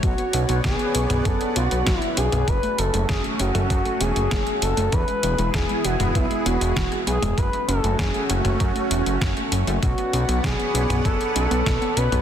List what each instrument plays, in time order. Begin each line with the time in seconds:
Already playing: analog synth pad C#5
0.03 analog synth bass B1, synth arpeggio sound F#3, analog synth pad B3 B4 D5 F#5, analog synth lead F#4, kick, closed hi-hat
0.18 synth arpeggio sound B3, closed hi-hat
0.33 analog synth bass B1, synth arpeggio sound C#4, closed hi-hat
0.49 analog synth bass B1, synth arpeggio sound B3, closed hi-hat
0.64 analog synth bass B1, synth arpeggio sound F#3, analog synth lead G#4, kick, snare, closed hi-hat
0.79 synth arpeggio sound B3, closed hi-hat
0.95 analog synth bass B1, synth arpeggio sound C#4, closed hi-hat
1.10 analog synth bass B1, synth arpeggio sound B3, closed hi-hat, mid tom
1.25 analog synth bass F#1, synth arpeggio sound F#3, analog synth lead A4, kick, closed hi-hat
1.41 synth arpeggio sound B3, closed hi-hat
1.56 analog synth bass B1, synth arpeggio sound C#4, analog synth lead F#4, closed hi-hat
1.71 analog synth bass B1, synth arpeggio sound B3, closed hi-hat
1.86 analog synth bass B1, synth arpeggio sound F#3, kick, snare, closed hi-hat
2.00 synth arpeggio sound B3, analog synth lead E4, closed hi-hat
2.17 analog synth bass B1, synth arpeggio sound C#4, analog synth lead G#4, closed hi-hat
2.32 analog synth bass B1, synth arpeggio sound B3, closed hi-hat, mid tom
2.48 analog synth bass F#1, synth arpeggio sound F#3, analog synth pad A3 C#4 F#4, analog synth lead B4, kick, closed hi-hat
2.63 synth arpeggio sound A3, closed hi-hat
2.78 analog synth bass F#1, synth arpeggio sound C#4, analog synth lead A4, closed hi-hat
2.94 analog synth bass F#1, synth arpeggio sound A3, closed hi-hat
3.09 analog synth bass F#1, synth arpeggio sound F#3, analog synth lead G#4, kick, snare, closed hi-hat
3.24 synth arpeggio sound A3, closed hi-hat
3.40 analog synth bass F#1, synth arpeggio sound C#4, analog synth lead F#4, closed hi-hat
3.55 analog synth bass F#1, synth arpeggio sound A3, closed hi-hat, mid tom
3.70 analog synth bass F#2, synth arpeggio sound F#3, kick, closed hi-hat
3.85 synth arpeggio sound A3, closed hi-hat
4.01 analog synth bass E1, synth arpeggio sound C#4, analog synth lead G#4, closed hi-hat
4.16 analog synth bass F#1, synth arpeggio sound A3, closed hi-hat
4.31 analog synth bass F#1, synth arpeggio sound F#3, kick, snare, closed hi-hat
4.47 synth arpeggio sound A3, closed hi-hat
4.62 analog synth bass F#1, synth arpeggio sound C#4, analog synth lead A4, closed hi-hat
4.77 analog synth bass F#1, synth arpeggio sound A3, closed hi-hat
4.92 analog synth bass E2, synth arpeggio sound E3, analog synth pad B3 E4 G#4, analog synth lead B4, kick, closed hi-hat
5.08 synth arpeggio sound G#3, closed hi-hat
5.23 analog synth bass E1, synth arpeggio sound B3, closed hi-hat
5.38 analog synth bass E1, synth arpeggio sound G#3, closed hi-hat
5.54 analog synth bass E1, synth arpeggio sound E3, analog synth lead G#4, kick, snare, closed hi-hat
5.69 synth arpeggio sound G#3, closed hi-hat
5.85 analog synth bass E1, synth arpeggio sound B3, analog synth lead F#4, closed hi-hat
6.00 analog synth bass E1, synth arpeggio sound G#3, closed hi-hat, mid tom
6.15 analog synth bass B1, synth arpeggio sound E3, analog synth lead E4, kick, closed hi-hat
6.31 synth arpeggio sound G#3, closed hi-hat
6.46 analog synth bass E1, synth arpeggio sound B3, analog synth lead F#4, closed hi-hat
6.61 analog synth bass E1, synth arpeggio sound G#3, closed hi-hat
6.76 analog synth bass E1, synth arpeggio sound E3, kick, snare, closed hi-hat
6.92 synth arpeggio sound G#3, closed hi-hat
7.07 analog synth bass B1, synth arpeggio sound B3, analog synth lead G#4, closed hi-hat
7.22 analog synth bass E1, synth arpeggio sound G#3, closed hi-hat, mid tom
7.37 analog synth bass F#1, synth arpeggio sound F#3, analog synth pad A3 C#4 F#4, analog synth lead B4, kick, closed hi-hat
7.53 synth arpeggio sound A3, closed hi-hat
7.68 analog synth bass F#1, synth arpeggio sound C#4, analog synth lead A4, closed hi-hat
7.84 analog synth bass F#1, synth arpeggio sound A3, closed hi-hat
7.99 analog synth bass F#1, synth arpeggio sound F#3, analog synth lead G#4, kick, snare, closed hi-hat
8.14 synth arpeggio sound A3, closed hi-hat
8.29 analog synth bass F#1, synth arpeggio sound C#4, analog synth lead F#4, closed hi-hat
8.45 analog synth bass F#1, synth arpeggio sound A3, closed hi-hat, mid tom
8.60 analog synth bass F#2, synth arpeggio sound F#3, kick, closed hi-hat
8.76 synth arpeggio sound A3, closed hi-hat
8.91 analog synth bass E1, synth arpeggio sound C#4, closed hi-hat
9.06 analog synth bass F#1, synth arpeggio sound A3, closed hi-hat
9.21 analog synth bass F#1, synth arpeggio sound F#3, kick, snare, closed hi-hat
9.37 synth arpeggio sound A3, closed hi-hat
9.52 analog synth bass F#1, synth arpeggio sound C#4, closed hi-hat
9.67 analog synth bass F#1, synth arpeggio sound A3, closed hi-hat
9.83 analog synth bass B1, synth arpeggio sound F#3, analog synth pad B3 B4 C#5 D5 F#5, analog synth lead F#4, kick, closed hi-hat
9.98 synth arpeggio sound B3, closed hi-hat
10.13 analog synth bass B1, synth arpeggio sound C#4, closed hi-hat
10.29 analog synth bass B1, synth arpeggio sound B3, closed hi-hat
10.44 synth arpeggio sound F#3, analog synth lead G#4, kick, snare, closed hi-hat
10.59 synth arpeggio sound B3, closed hi-hat
10.74 analog synth bass B1, synth arpeggio sound C#4, closed hi-hat
10.90 analog synth bass B1, synth arpeggio sound B3, closed hi-hat, mid tom
11.05 analog synth bass F#1, synth arpeggio sound F#3, analog synth lead A4, kick, closed hi-hat
11.20 synth arpeggio sound B3, closed hi-hat
11.36 analog synth bass B1, synth arpeggio sound C#4, analog synth lead A4, closed hi-hat
11.51 analog synth bass B1, synth arpeggio sound B3, closed hi-hat
11.66 analog synth bass B1, synth arpeggio sound F#3, kick, snare, closed hi-hat
11.82 synth arpeggio sound B3, closed hi-hat
11.97 analog synth bass B1, synth arpeggio sound C#4, analog synth lead B4, closed hi-hat
12.12 analog synth bass B1, synth arpeggio sound B3, closed hi-hat, mid tom